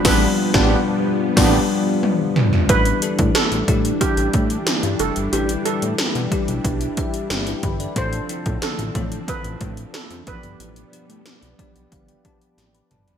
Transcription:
<<
  \new Staff \with { instrumentName = "Steel pan" } { \time 4/4 \key e \phrygian \tempo 4 = 91 b'2.~ b'8 r8 | b'4 a'4 g'4. a'8 | g'8 a'4. r2 | c''4 a'4 b'4 a'8 b'8~ |
b'2. r4 | }
  \new Staff \with { instrumentName = "Analog polysynth" } { \time 4/4 \key e \phrygian <b d' g'>8 r16 <b d' g'>8 r8. <b d' g'>8 r4. | r2 <d' e' g'>2~ | <d' e' g'>1 | <d' f' a'>2.~ <d' f' a'>8 <g' b' d''>8~ |
<g' b' d''>1 | }
  \new Staff \with { instrumentName = "Tine electric piano" } { \time 4/4 \key e \phrygian << { r1 | r1 | r2 r8 e''8 <d' g' g''>16 <e' b'>16 b''16 <a' d''>16~ | <a' d''>16 r2. r8. |
r4. d''8 f''16 g''16 a''8 g''16 b''16 a''8 | } \\ { <g d' f' b'>8 r16 <g d' f' b'>8 r8. <g d' f' b'>8 r4. | <g d' e' b'>16 r16 <g d' e' a'>8 r8 <g d' e' g'>4~ <g d' e' g'>16 r4 r16 | <g d' e' b'>16 r16 <g d' e' b'>8 r8 <g d' e' g'>8 r2 | <f c' d' a'>16 r16 <f c' d' e'>8 r8 <e f c' d' a'>4~ <e f c' d' a'>16 r8. <f b d' g'>8~ |
<f b d' g'>16 r16 <f b d' g'>8 r8 <f b d' g'>8 r8 <f b d' g'>4 r8 | } >> }
  \new Staff \with { instrumentName = "String machine" } { \clef bass \time 4/4 \key e \phrygian <f g b>1 | <e g d'>1~ | <e g d'>1 | <d f c'>2.~ <d f c'>8 <g b>8~ |
<g b>1 | }
  \new Staff \with { instrumentName = "Analog synth bass" } { \clef bass \time 4/4 \key e \phrygian a,,8 r16 a,,8 r8. a,,8 r4. | a,,8 r16 a,16 r16 a,,16 a,8 r16 a,,16 a,8 r16 g,16 f,,16 g,,16 | a,,8 r16 a,16 r16 b,16 r16 b,,16 b,,8 r8 g,,8 g,,8 | a,,8 r16 a,16 r16 a,,16 a,8 r16 a,,16 a,8 r16 f,16 a,,16 g,,16 |
a,,8 r16 a,16 r16 b,,16 r16 b,,16 g,,8 r8 a,,8 g,,8 | }
  \new DrumStaff \with { instrumentName = "Drums" } \drummode { \time 4/4 <cymc bd sn>8. <bd sn>16 r4 <cymc bd sn>4 tommh8 toml16 tomfh16 | <hh bd>16 hh16 hh16 <hh bd>16 <hh sn>16 hh16 <hh bd>16 hh16 <hh bd>16 hh16 <hh bd>16 hh16 <hh sn>16 hh16 hh16 hh16 | hh16 hh16 hh16 hh16 <hh sn>16 hh16 <hh bd>16 hh16 <hh bd>16 hh16 <hh bd>16 hh16 <hh sn>16 hh16 <hh bd>16 hh16 | <hh bd>16 hh16 hh16 <hh bd>16 <hh sn>16 hh16 <hh bd>16 hh16 <hh bd>16 hh16 <hh bd>16 hh16 <hh sn>16 hh16 <hh bd>16 hh16 |
hh16 hh16 hh16 hh16 <hh sn>16 hh16 <hh bd>16 hh16 <hh bd>16 hh16 <hh bd>16 hh16 <hh sn>16 hh16 <hh toml>16 <hh tomfh>16 | }
>>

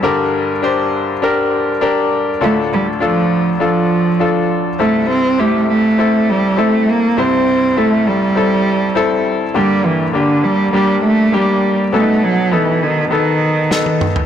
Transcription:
<<
  \new Staff \with { instrumentName = "Grand piano" } { \time 4/4 \key g \dorian \tempo 4 = 101 <d' g' bes'>4 <d' g' c''>4 <d' g' bes'>4 <d' g' bes'>4 | <d' f' a'>4 <d' f' a'>4 <d' f' a'>4 <d' f' a'>4 | <c' e' a'>4 <c' e' g'>4 <c' e' a'>4 <c' e' a'>4 | <c' e' c''>4 <c' e' a'>4 <c' e' a'>4 <c' e' a'>4 |
<bes d' g'>4 <bes d' g'>4 <bes d' g'>4 <bes d' g'>4 | <b des' dis' a'>4 <b dis' a'>4 <b dis' a'>4 <b dis' a'>4 | }
  \new Staff \with { instrumentName = "Grand piano" } { \clef bass \time 4/4 \key g \dorian <g, d>1 | <d, a,>1 | <c, g,>1 | <c, g,>1 |
<g, d>1 | <b, fis>1 | }
  \new Staff \with { instrumentName = "Cello" } { \clef bass \time 4/4 \key g \dorian r1 | a8 g8 f4 f4. r8 | a8 c'8 a8 a4 g8 a8 bes8 | c'4 a8 g2 r8 |
g8 e8 d8 g8 g8 a8 g8. r16 | a8 fis8 e8 dis8 dis4. r8 | }
  \new DrumStaff \with { instrumentName = "Drums" } \drummode { \time 4/4 r4 r4 r4 r4 | r4 r4 r4 r4 | r4 r4 r4 r4 | r4 r4 r4 r4 |
r4 r4 r4 r4 | r4 r4 r4 sn16 tommh16 toml16 tomfh16 | }
>>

